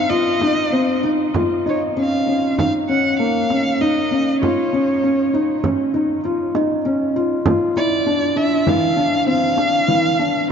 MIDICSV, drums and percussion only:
0, 0, Header, 1, 2, 480
1, 0, Start_track
1, 0, Key_signature, -5, "minor"
1, 0, Tempo, 617920
1, 1046, Time_signature, 5, 2, 24, 8
1, 3438, Tempo, 607903
1, 8248, End_track
2, 0, Start_track
2, 0, Title_t, "Frame drum"
2, 81, Note_on_c, 9, 64, 18
2, 159, Note_off_c, 9, 64, 0
2, 324, Note_on_c, 9, 64, 46
2, 401, Note_off_c, 9, 64, 0
2, 577, Note_on_c, 9, 64, 17
2, 655, Note_off_c, 9, 64, 0
2, 1044, Note_on_c, 9, 64, 56
2, 1122, Note_off_c, 9, 64, 0
2, 1292, Note_on_c, 9, 64, 17
2, 1370, Note_off_c, 9, 64, 0
2, 2009, Note_on_c, 9, 64, 52
2, 2086, Note_off_c, 9, 64, 0
2, 2721, Note_on_c, 9, 64, 40
2, 2798, Note_off_c, 9, 64, 0
2, 2961, Note_on_c, 9, 64, 16
2, 3039, Note_off_c, 9, 64, 0
2, 3440, Note_on_c, 9, 64, 52
2, 3519, Note_off_c, 9, 64, 0
2, 3679, Note_on_c, 9, 64, 17
2, 3758, Note_off_c, 9, 64, 0
2, 4394, Note_on_c, 9, 64, 53
2, 4473, Note_off_c, 9, 64, 0
2, 5115, Note_on_c, 9, 64, 44
2, 5194, Note_off_c, 9, 64, 0
2, 5355, Note_on_c, 9, 64, 18
2, 5434, Note_off_c, 9, 64, 0
2, 5830, Note_on_c, 9, 64, 64
2, 5909, Note_off_c, 9, 64, 0
2, 6073, Note_on_c, 9, 64, 19
2, 6152, Note_off_c, 9, 64, 0
2, 6790, Note_on_c, 9, 64, 55
2, 6869, Note_off_c, 9, 64, 0
2, 7507, Note_on_c, 9, 64, 44
2, 7585, Note_off_c, 9, 64, 0
2, 7748, Note_on_c, 9, 64, 17
2, 7827, Note_off_c, 9, 64, 0
2, 8248, End_track
0, 0, End_of_file